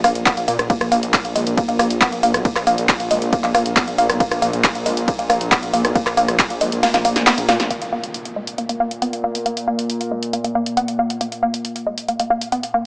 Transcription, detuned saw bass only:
0.04 A#1
0.15 A#1
0.37 A#1
0.48 A#2
0.59 A#1
0.81 A#1
0.92 A#1
1.03 A#1
1.25 A#1
1.36 A#1
1.47 A#1
1.69 A#1
1.79 A#1
1.91 A#1
2.12 A#1
2.23 A#1
2.34 B1
2.56 A#1
2.67 A#1
2.78 A#1
3.00 A#1
3.11 A#1
3.22 A#1
3.44 A#1
3.55 A#1
3.66 A#1
3.88 A#1
3.98 A#1
4.09 B1
4.31 A#1
4.42 A#1
4.53 A#1
4.75 A#1
4.86 A#1
4.97 A#1
5.19 A#1
5.30 A#1
5.41 A#1
5.63 A#1
5.74 A#1
5.85 B1
6.06 A#1
6.17 A#1
6.29 A#1
6.50 A#1
6.61 A#1
6.72 A#1
6.94 A#1
7.05 A#1
7.16 A#1
7.38 A#1
7.49 A#2
7.60 A#1

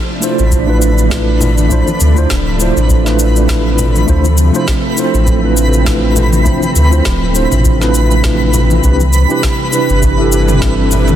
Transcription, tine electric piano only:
0.20 A3 D4 E4 F4 C5
0.66 A3 D4 E4 F4 B4
1.09 A3 D4 E4 F4 B4
1.69 A3 D4 E4 F4 C5
2.15 A3 D4 E4 F4 C5
2.58 A3 D4 E4 F4 C5
3.04 A3 D4 E4 F4 B4
3.47 A3 D4 E4 F4 B4
4.06 A3 D4 E4 F4 C5
4.53 A3 D4 E4 F4 C5
4.96 A3 D4 E4 F4 C5
5.42 A3 D4 E4 F4 B4
5.84 A3 D4 E4 F4 B4
6.44 A3 D4 E4 F4 C5
6.90 A3 D4 E4 F4 C5
7.33 A3 D4 E4 F4 C5
7.80 A3 D4 E4 F4 B4
8.23 A3 D4 E4 F4 B4
8.82 C4 D4 E4 G4 B4
9.28 C4 D4 E4 G4 B4
9.71 C4 D4 E4 G4 B4
10.17 C4 D4 E4 G4 A4
10.60 C4 D4 E4 G4 A4

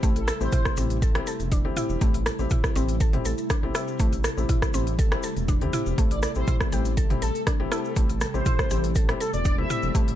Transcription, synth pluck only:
0.03 A3
0.28 A4
0.53 E4
0.78 C4
1.02 A4
1.27 A4
1.52 D4
1.77 E4
2.02 A3
2.26 A4
2.51 E4
2.76 C4
3.01 A4
3.25 A4
3.50 D4
3.75 E4
4.00 A3
4.24 A4
4.49 E4
4.74 C4
4.99 A4
5.24 A4
5.49 D4
5.73 E4
5.98 A3
6.23 A4
6.48 E4
6.73 G4
6.97 A4
7.22 A4
7.47 D4
7.72 E4
7.96 A3
8.21 A4
8.46 E4
8.71 G4
8.96 A4
9.20 A4
9.45 D4
9.70 E4
9.95 A3

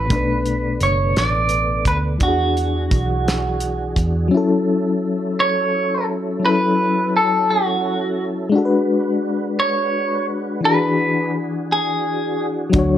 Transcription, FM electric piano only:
Already playing: E4 F#4
0.07 B2 A3
0.13 D4 B4
2.18 E3 D4
2.25 F#4 G#4
4.28 F#3 C#4
4.34 E4 A4
6.40 F#3 C#4
6.45 E4 A4
8.49 G#3 D4
8.55 F#4 A4
8.65 B4
10.61 E3 D4
10.67 F#4 G#4
12.70 F#3 D4
12.76 F#4 C#5

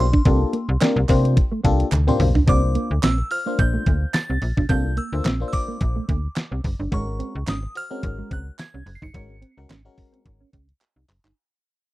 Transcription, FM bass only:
Already playing: B1
0.25 C2
0.69 C2
0.96 C2
1.09 C3
1.65 C2
1.92 D2
2.20 B1
2.48 C2
2.91 D2
3.03 A#1
3.59 A#1
3.86 D2
4.30 C2
4.42 A#1
4.57 B1
4.70 C2
5.13 D2
5.25 A#1
5.81 A#1
6.09 D2
6.52 C2
6.64 F#1
6.80 G1
6.92 G#1
7.35 C#2
7.48 G#1
8.03 G#1
8.31 C#2
8.74 C2
8.86 F#1
9.02 G1
9.14 G#1
9.58 C#2
9.70 G#1
10.26 G#1
10.53 C#2
10.96 C2
11.09 F#1
11.24 G1

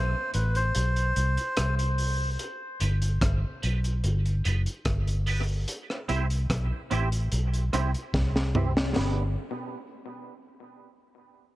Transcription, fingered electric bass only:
Already playing: B1
0.35 A1
0.76 B1
1.17 C2
1.58 C2
2.81 G1
3.22 G1
3.64 B1
4.04 G1
4.46 F#1
4.86 G1
6.10 C2
6.51 B1
6.92 A1
7.33 B1
7.74 C2
8.14 C2
8.97 G1

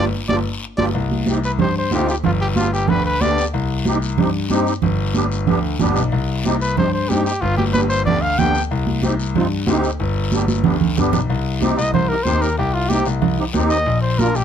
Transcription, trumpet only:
0.29 D5
0.78 D5
1.45 B4
1.61 C5
1.78 C5
1.94 G4
2.10 G4
2.25 F4
2.41 G4
2.56 F4
2.73 G4
2.89 B4
3.06 B4
3.21 D5
6.62 B4
6.78 C5
6.93 C5
7.09 G4
7.26 G4
7.41 F4
7.57 G4
7.73 B4
7.89 C5
8.06 D5
8.22 F5
8.39 G5
11.77 D#5
11.94 C5
12.09 A#4
12.24 C5
12.42 A#4
12.58 G4
12.74 F4
12.89 G4
13.69 D#5
14.01 C5
14.19 A#4
14.36 G4

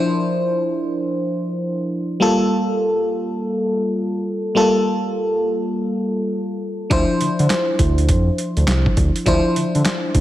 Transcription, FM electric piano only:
Already playing: F3 D4 E4 C5
2.20 G3 A#3 F4 A4
4.55 G3 A#3 F4 A4
6.90 F3 D4 E4 C5
9.26 F3 D4 E4 C5

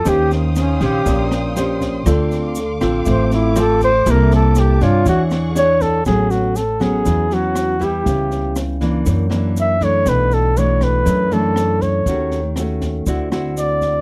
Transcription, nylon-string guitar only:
0.05 D#3 C#4 G4 C5
0.81 C#4 G4 C5
1.06 A#2
1.56 C#4 G4 C5
2.06 D3 C4 F4 A4
2.81 C4 F4 A4
3.05 A3
3.56 C4 F4 A4
4.06 C3 A#3 E4 A4
4.81 D4 G#4 C#5
5.06 E3
5.55 D4 G#4 C#5
6.06 A2 F#3 B3 C#4
6.80 F#3 B3 C#4
7.05 E3
7.31 F#3 B3 C#4
7.79 G3 B3 E4
8.06 C#3
8.81 E3 A#3 D4
9.06 F#2
9.30 E3 A#3 D4
9.81 E3 A3 D4
10.06 B2
10.57 E3 A3 D4
11.05 F#2
11.31 E3 A3 D4
12.07 D#3 A3 C#4 F#4
12.58 A3 C#4 F#4
13.07 D3 C4 E4 F#4
13.32 C4 E4 F#4

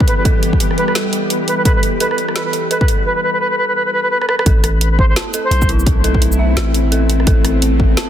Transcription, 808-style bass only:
0.07 E2
0.77 E1
2.53 B1
2.88 E2
4.46 A1
5.51 B1
6.56 A1
7.27 A1

